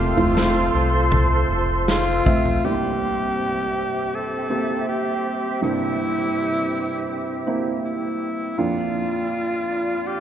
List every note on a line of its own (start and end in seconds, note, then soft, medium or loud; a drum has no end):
0.00 0.14 F1 loud
0.00 0.70 C3 medium
0.00 0.15 A3 medium
0.00 0.15 C4 medium
0.00 0.15 F4 medium
0.00 1.46 F4 medium
0.00 2.33 F4 medium
0.00 2.61 A4 medium
0.00 2.61 C5 medium
0.00 2.61 C6 medium
0.17 0.70 F1 medium
0.17 1.60 A3 medium
0.17 1.60 C4 medium
0.17 1.60 F4 medium
0.17 floor tom medium
0.37 snare medium
0.74 1.45 C2 medium
1.11 kick medium
1.11 floor tom medium
1.49 2.21 F1 medium
1.88 2.67 F4 medium
1.88 snare medium
2.25 2.61 A#1 medium
2.25 2.62 A3 medium
2.25 2.62 C4 medium
2.25 2.62 E5 medium
2.25 kick medium
2.45 floor tom medium
2.63 5.58 C2 soft
2.63 5.58 G2 soft
2.63 4.06 A#3 medium
2.63 8.54 C4 medium
2.63 4.06 C4 soft
2.63 4.06 E4 medium
2.63 8.27 G4 medium
2.63 4.16 G4 medium
2.63 8.54 C5 soft
2.63 8.29 E5 medium
4.15 4.88 A4 medium
4.50 5.56 A#3 medium
4.50 5.56 C4 soft
4.50 5.56 G4 medium
4.88 5.58 G4 medium
5.61 8.54 C2 soft
5.61 8.54 G2 soft
5.61 7.02 A#3 medium
5.61 7.02 C4 soft
5.61 7.03 D4 medium
5.61 7.54 E4 medium
7.47 8.52 A#3 medium
7.47 8.52 C4 medium
7.47 8.52 E4 medium
7.84 8.59 E4 medium
8.57 10.20 A#1 soft
8.57 10.20 F2 soft
8.57 9.99 A#3 medium
8.57 9.99 D4 soft
8.57 10.20 F4 medium
8.57 10.09 F4 medium
8.57 9.99 F4 medium
8.57 10.20 D5 medium
10.07 10.20 G4 medium